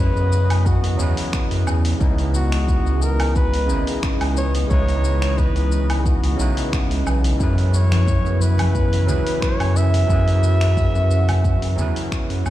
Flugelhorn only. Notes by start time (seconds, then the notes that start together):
0.00 B4
0.67 F#4
2.35 F#4
3.03 A#4
3.36 B4
4.38 C#5
4.70 C#5
5.38 B4
6.00 G#4
6.05 F#4
7.75 C#5
8.42 B4
9.43 C#5
9.77 E5